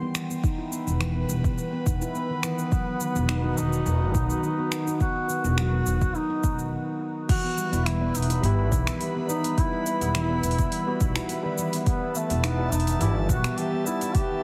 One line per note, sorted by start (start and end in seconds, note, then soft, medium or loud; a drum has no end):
0.00 0.14 B3 medium
0.00 2.68 G5 medium
0.00 0.41 C6 medium
0.15 0.29 E3 medium
0.15 finger snap medium
0.15 cabasa medium
0.30 0.43 B3 medium
0.30 cabasa soft
0.43 0.57 D#4 medium
0.43 6.68 B4 medium
0.43 kick loud
0.43 cabasa soft
0.58 0.71 E4 medium
0.72 0.85 B3 medium
0.72 cabasa medium
0.87 1.26 E1 medium
0.87 1.00 D#3 medium
0.87 cabasa soft
1.00 1.15 E3 loud
1.00 finger snap medium
1.00 cabasa soft
1.15 1.28 B3 medium
1.29 1.53 E1 medium
1.29 1.43 G3 medium
1.29 cabasa medium
1.44 1.57 B3 medium
1.44 kick loud
1.44 cabasa soft
1.58 1.71 E3 medium
1.58 cabasa soft
1.73 1.86 B3 medium
1.86 1.99 E1 medium
1.86 2.00 D#4 medium
1.86 kick medium
1.86 cabasa medium
2.02 2.14 E4 loud
2.02 cabasa soft
2.15 2.29 B3 medium
2.15 cabasa soft
2.30 2.43 D#3 medium
2.43 2.58 E3 loud
2.43 3.60 B3 loud
2.43 finger snap medium
2.43 cabasa medium
2.58 2.70 B3 medium
2.58 cabasa soft
2.72 6.68 D#3 medium
2.72 2.86 F#3 medium
2.72 6.68 B3 medium
2.72 6.68 F#4 medium
2.72 kick loud
2.72 cabasa soft
2.87 3.00 B3 medium
3.00 3.14 D#3 medium
3.00 cabasa medium
3.16 3.54 E1 medium
3.16 3.29 B3 medium
3.16 cabasa soft
3.29 3.43 D#4 medium
3.29 finger snap medium
3.29 cabasa soft
3.44 3.56 D#4 loud
3.58 3.82 E1 medium
3.58 3.71 B3 medium
3.58 4.43 D#4 loud
3.58 cabasa medium
3.73 3.85 D#3 medium
3.73 cabasa soft
3.86 4.15 E1 loud
3.86 4.01 D#3 loud
3.86 cabasa soft
4.02 4.14 B3 medium
4.15 4.28 B1 loud
4.15 4.29 F#3 medium
4.15 kick loud
4.15 cabasa medium
4.30 4.43 B3 medium
4.30 cabasa soft
4.43 4.57 D#3 medium
4.43 4.97 D#4 loud
4.43 cabasa soft
4.59 4.71 B3 medium
4.72 4.86 D#4 medium
4.72 finger snap medium
4.72 cabasa medium
4.87 4.99 D#4 medium
4.87 cabasa soft
5.01 5.14 B3 medium
5.01 5.54 F#4 loud
5.01 kick loud
5.01 cabasa soft
5.16 5.28 D#3 medium
5.29 5.44 D#3 loud
5.29 cabasa medium
5.44 5.83 E1 medium
5.44 5.56 B3 medium
5.44 cabasa soft
5.58 5.71 F#3 medium
5.58 6.17 F#4 loud
5.58 finger snap medium
5.58 cabasa soft
5.73 5.86 B3 medium
5.86 6.10 E1 medium
5.86 6.00 D#3 medium
5.86 cabasa medium
6.02 kick loud
6.02 cabasa soft
6.15 6.29 D#4 medium
6.15 6.72 D#4 loud
6.15 cabasa soft
6.30 6.42 D#4 loud
6.43 6.72 E1 medium
6.43 6.57 B3 medium
6.43 kick loud
6.43 cabasa medium
6.58 6.71 D#3 medium
6.58 cabasa soft
7.29 7.43 E3 loud
7.29 7.88 F#4 loud
7.29 14.43 B4 medium
7.29 14.43 E5 medium
7.29 11.82 B5 medium
7.29 kick loud
7.29 open hi-hat medium
7.29 crash loud
7.29 cabasa soft
7.44 7.56 B3 medium
7.58 7.71 G3 medium
7.58 cabasa medium
7.72 8.11 E1 medium
7.72 7.97 G3 medium
7.72 7.86 B3 medium
7.72 7.98 B3 medium
7.72 7.98 E4 medium
7.72 open hi-hat soft
7.72 cabasa soft
7.86 8.00 E3 medium
7.86 8.17 E4 loud
7.86 finger snap medium
7.86 open hi-hat medium
7.86 cabasa soft
8.00 8.13 G3 medium
8.00 8.13 B3 medium
8.00 8.14 B3 medium
8.00 8.13 E4 medium
8.14 8.39 E1 medium
8.14 8.28 D#4 medium
8.14 8.45 D#4 medium
8.14 open hi-hat soft
8.14 cabasa medium
8.22 open hi-hat medium
8.30 8.42 E4 medium
8.30 open hi-hat soft
8.30 cabasa soft
8.41 8.72 G1 loud
8.41 9.25 G3 loud
8.41 9.26 B3 medium
8.41 8.57 B3 medium
8.41 9.01 E4 loud
8.41 open hi-hat medium
8.41 cabasa soft
8.45 9.27 G4 loud
8.59 8.71 D#3 medium
8.72 8.85 B1 medium
8.72 8.86 E3 loud
8.72 kick loud
8.72 open hi-hat soft
8.72 cabasa medium
8.87 8.99 B3 medium
8.87 finger snap medium
8.87 open hi-hat soft
8.87 cabasa soft
9.01 9.14 G3 medium
9.01 open hi-hat medium
9.01 cabasa soft
9.16 9.29 B3 medium
9.27 9.43 E3 medium
9.27 9.97 G3 medium
9.27 9.98 B3 medium
9.27 9.59 D#4 loud
9.27 cabasa medium
9.44 9.57 B3 medium
9.44 open hi-hat soft
9.44 cabasa soft
9.58 9.71 D#4 medium
9.58 11.58 E4 loud
9.58 kick loud
9.58 open hi-hat medium
9.58 cabasa soft
9.73 9.85 E4 medium
9.86 10.00 B3 medium
9.86 open hi-hat soft
9.86 cabasa medium
10.00 10.40 E1 loud
10.00 10.14 D#3 medium
10.00 10.26 G3 medium
10.00 10.26 B3 medium
10.00 10.27 E4 medium
10.00 open hi-hat soft
10.00 cabasa soft
10.15 10.29 E3 loud
10.15 finger snap medium
10.15 open hi-hat medium
10.15 cabasa soft
10.29 10.83 G3 medium
10.29 10.83 B3 medium
10.29 10.42 B3 medium
10.43 10.68 E1 medium
10.43 10.57 G3 medium
10.43 open hi-hat soft
10.43 cabasa medium
10.51 open hi-hat medium
10.59 10.71 B3 medium
10.59 kick loud
10.59 open hi-hat soft
10.59 cabasa soft
10.72 10.86 E3 medium
10.72 open hi-hat medium
10.72 cabasa soft
10.86 11.40 G3 medium
10.86 11.41 B3 medium
10.86 11.00 B3 medium
10.86 11.41 F#4 loud
11.00 11.13 B1 medium
11.00 11.15 D#4 medium
11.00 kick loud
11.00 open hi-hat soft
11.00 cabasa medium
11.16 11.28 E4 loud
11.16 finger snap medium
11.16 open hi-hat soft
11.16 cabasa soft
11.29 11.43 B3 medium
11.29 open hi-hat medium
11.29 cabasa soft
11.42 11.57 D#3 medium
11.42 12.25 G3 loud
11.42 12.26 B3 medium
11.58 11.73 E3 loud
11.58 cabasa medium
11.73 11.85 B3 medium
11.73 open hi-hat soft
11.73 cabasa soft
11.86 12.00 G3 medium
11.86 12.17 B3 medium
11.86 14.43 A5 medium
11.86 kick loud
11.86 open hi-hat medium
11.86 cabasa soft
12.02 12.14 B3 medium
12.15 12.29 E3 medium
12.15 12.46 A3 medium
12.15 cabasa medium
12.29 12.69 E1 loud
12.29 12.54 G3 medium
12.29 12.55 B3 medium
12.29 12.43 B3 medium
12.29 12.55 E4 medium
12.29 open hi-hat soft
12.29 cabasa soft
12.44 12.74 B3 loud
12.44 12.57 D#4 medium
12.44 finger snap medium
12.44 open hi-hat soft
12.44 cabasa soft
12.58 12.70 G3 medium
12.58 12.70 B3 medium
12.58 12.71 E4 loud
12.58 12.71 E4 medium
12.72 12.96 E1 medium
12.72 12.86 B3 medium
12.72 13.00 D#4 loud
12.72 open hi-hat soft
12.72 cabasa medium
12.80 open hi-hat medium
12.87 13.00 D#3 medium
12.87 open hi-hat soft
12.87 cabasa soft
12.99 13.31 G1 loud
12.99 13.15 E3 loud
12.99 13.82 G3 loud
12.99 13.83 B3 medium
12.99 13.14 E4 loud
12.99 13.84 G4 loud
12.99 open hi-hat medium
12.99 cabasa soft
13.16 13.28 B3 medium
13.29 13.42 B1 loud
13.29 13.43 G3 medium
13.29 13.59 F#4 loud
13.29 kick loud
13.29 open hi-hat soft
13.29 cabasa medium
13.44 13.57 B3 medium
13.44 finger snap medium
13.44 open hi-hat soft
13.44 cabasa soft
13.58 13.72 E3 medium
13.58 13.86 G4 loud
13.58 open hi-hat medium
13.58 cabasa soft
13.73 13.86 B3 medium
13.84 14.43 E3 loud
13.84 14.43 G3 loud
13.84 14.43 B3 medium
13.84 14.00 D#4 medium
13.84 14.16 E4 loud
13.84 cabasa medium
14.01 14.14 E4 loud
14.01 open hi-hat soft
14.01 cabasa soft
14.15 14.29 B3 medium
14.15 14.43 G4 loud
14.15 kick loud
14.15 open hi-hat medium
14.15 cabasa soft
14.30 14.43 D#3 medium